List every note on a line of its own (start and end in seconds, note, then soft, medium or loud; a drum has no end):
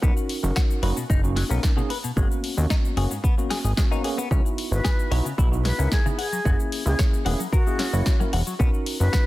0.02 0.12 B1 loud
0.02 0.13 B3 medium
0.02 0.40 C#4 medium
0.02 0.40 D#4 medium
0.02 0.40 F#4 medium
0.02 0.39 A#4 medium
0.02 kick loud
0.02 shaker medium
0.17 shaker soft
0.29 open hi-hat loud
0.43 0.52 F#1 loud
0.43 0.79 C#4 medium
0.43 0.80 D#4 medium
0.43 0.80 F#4 medium
0.43 0.79 A#4 medium
0.43 shaker medium
0.56 0.60 F#4 loud
0.56 kick loud
0.56 snare loud
0.56 shaker medium
0.71 shaker soft
0.82 0.92 F#1 loud
0.82 0.96 A#3 medium
0.82 0.96 C#4 medium
0.82 0.96 D#4 medium
0.82 0.97 F#4 loud
0.82 0.90 B4 medium
0.82 open hi-hat loud
0.97 1.03 B2 medium
0.97 shaker medium
1.10 1.44 F#1 loud
1.10 1.20 D#4 medium
1.10 kick loud
1.10 shaker medium
1.23 1.47 A#3 medium
1.23 1.47 C#4 medium
1.23 1.47 D#4 medium
1.23 1.48 F#4 medium
1.23 shaker soft
1.36 1.43 F#3 medium
1.36 snare medium
1.36 open hi-hat loud
1.50 1.59 B1 medium
1.50 1.71 A#3 medium
1.50 1.60 B3 medium
1.50 1.71 C#4 medium
1.50 1.71 D#4 medium
1.50 1.71 A#4 loud
1.50 shaker medium
1.63 kick loud
1.63 snare loud
1.63 shaker medium
1.76 1.81 B2 loud
1.76 1.89 A#3 medium
1.76 1.89 C#4 medium
1.76 1.89 D#4 medium
1.76 1.90 G#4 medium
1.76 shaker soft
1.90 1.97 B4 medium
1.90 open hi-hat medium
2.04 2.10 B2 medium
2.04 shaker medium
2.16 2.26 G#1 loud
2.16 2.27 G#3 medium
2.16 2.54 A#3 medium
2.16 2.54 B3 medium
2.16 2.54 C#4 medium
2.16 2.54 F#4 medium
2.16 kick loud
2.16 shaker medium
2.31 shaker soft
2.44 open hi-hat medium
2.57 2.66 D#2 loud
2.57 2.94 A#3 medium
2.57 2.94 B3 medium
2.57 2.94 C#4 medium
2.57 2.94 F#4 medium
2.57 shaker medium
2.70 2.74 D#4 loud
2.70 kick loud
2.70 snare loud
2.70 shaker medium
2.85 shaker soft
2.97 3.07 F#1 loud
2.97 3.10 A#3 medium
2.97 3.11 B3 medium
2.97 3.11 C#4 medium
2.97 3.11 F#4 loud
2.97 3.04 G#4 medium
2.97 open hi-hat loud
3.11 3.17 G#2 medium
3.11 shaker medium
3.24 3.34 B3 medium
3.24 kick loud
3.24 shaker medium
3.38 3.62 A#3 medium
3.38 3.62 B3 medium
3.38 3.62 C#4 medium
3.38 3.62 F#4 medium
3.38 shaker soft
3.50 3.57 G#4 medium
3.50 snare medium
3.50 open hi-hat loud
3.64 3.73 G#1 medium
3.64 3.71 G#4 medium
3.64 shaker medium
3.77 3.82 G#3 medium
3.77 3.88 A#3 medium
3.77 3.88 B3 medium
3.77 3.88 C#4 medium
3.77 3.88 F#4 medium
3.77 kick loud
3.77 snare loud
3.77 shaker medium
3.91 4.02 A#3 loud
3.91 4.02 B3 medium
3.91 4.02 C#4 medium
3.91 4.01 D#4 loud
3.91 4.03 F#4 loud
3.91 shaker soft
4.04 4.17 A#3 medium
4.04 4.18 B3 medium
4.04 4.18 C#4 medium
4.04 4.08 G#4 medium
4.04 4.18 G#4 medium
4.04 open hi-hat loud
4.18 4.28 B3 loud
4.18 shaker medium
4.30 4.41 C#2 loud
4.30 4.68 B3 medium
4.30 4.41 C#4 medium
4.30 4.68 D#4 medium
4.30 4.68 E4 medium
4.30 4.69 F#4 medium
4.30 kick loud
4.30 shaker medium
4.46 shaker soft
4.58 open hi-hat loud
4.71 4.81 G#1 loud
4.71 5.08 B3 medium
4.71 5.08 D#4 medium
4.71 5.08 E4 medium
4.71 5.08 F#4 medium
4.71 5.11 B4 medium
4.71 shaker medium
4.84 4.89 G#4 loud
4.84 kick loud
4.84 snare loud
4.84 shaker medium
4.99 shaker soft
5.11 5.21 B1 loud
5.11 5.25 B3 medium
5.11 5.25 D#4 medium
5.11 5.25 E4 medium
5.11 5.25 F#4 loud
5.11 5.18 C#5 medium
5.11 open hi-hat loud
5.25 5.32 C#3 medium
5.25 shaker medium
5.38 5.72 B1 loud
5.38 5.49 E4 medium
5.38 kick loud
5.38 shaker medium
5.51 5.76 B3 medium
5.51 5.76 D#4 medium
5.51 5.76 E4 medium
5.51 5.76 F#4 medium
5.51 shaker soft
5.65 5.72 G#3 medium
5.65 5.89 B4 loud
5.65 snare medium
5.65 open hi-hat loud
5.78 5.88 C#2 medium
5.78 5.99 B3 loud
5.78 5.88 C#4 medium
5.78 5.99 D#4 medium
5.78 5.99 E4 medium
5.78 6.00 A#4 loud
5.78 shaker medium
5.92 6.06 G#4 medium
5.92 kick loud
5.92 snare loud
5.92 shaker medium
6.05 6.09 C#3 loud
6.05 6.17 B3 medium
6.05 6.17 D#4 medium
6.05 6.17 E4 medium
6.05 6.17 G#4 medium
6.05 shaker soft
6.18 6.59 G#4 medium
6.18 6.25 F#5 medium
6.18 open hi-hat loud
6.32 6.39 F#3 medium
6.32 shaker medium
6.45 6.55 F#1 loud
6.45 6.82 A#3 medium
6.45 6.82 C#4 medium
6.45 6.83 E4 medium
6.45 6.56 F#4 medium
6.45 6.83 G#4 medium
6.45 kick loud
6.45 shaker medium
6.60 shaker soft
6.72 open hi-hat loud
6.85 6.95 C#2 loud
6.85 7.22 A#3 medium
6.85 7.23 C#4 medium
6.85 7.23 E4 medium
6.85 6.99 G#4 medium
6.85 7.23 G#4 medium
6.85 shaker medium
6.99 7.03 C#5 loud
6.99 kick loud
6.99 snare loud
6.99 shaker medium
7.14 shaker soft
7.25 7.35 E1 loud
7.25 7.39 A#3 loud
7.25 7.39 C#4 medium
7.25 7.39 E4 medium
7.25 7.40 G#4 loud
7.25 7.33 F#5 medium
7.25 open hi-hat loud
7.40 7.46 F#3 medium
7.40 shaker medium
7.52 8.28 F#4 loud
7.52 7.63 A#4 medium
7.52 kick loud
7.52 shaker medium
7.67 7.90 A#3 medium
7.67 7.90 C#4 medium
7.67 7.91 E4 medium
7.67 7.91 G#4 medium
7.67 shaker soft
7.79 7.86 C#4 medium
7.79 snare medium
7.79 open hi-hat loud
7.93 8.02 F#1 medium
7.93 8.14 A#3 medium
7.93 8.14 C#4 medium
7.93 8.14 E4 medium
7.93 8.03 F#4 medium
7.93 8.14 C#5 loud
7.93 shaker medium
8.06 kick loud
8.06 snare loud
8.06 shaker medium
8.20 8.24 F#3 loud
8.20 8.32 A#3 medium
8.20 8.32 C#4 medium
8.20 8.33 E4 medium
8.20 8.33 A#4 medium
8.20 shaker soft
8.33 8.43 E1 medium
8.33 8.40 F#5 medium
8.33 open hi-hat loud
8.47 8.53 F#3 medium
8.47 shaker medium
8.59 8.69 B1 loud
8.59 8.70 B3 medium
8.59 8.97 C#4 medium
8.59 8.97 D#4 medium
8.59 8.97 F#4 medium
8.59 8.97 A#4 medium
8.59 kick loud
8.59 shaker medium
8.74 shaker soft
8.86 open hi-hat loud
9.00 9.09 F#1 loud
9.00 9.27 C#4 medium
9.00 9.27 D#4 medium
9.00 9.27 F#4 medium
9.00 9.27 B4 loud
9.00 9.27 B4 medium
9.00 shaker medium
9.13 9.17 F#4 loud
9.13 kick loud
9.13 snare loud
9.13 shaker medium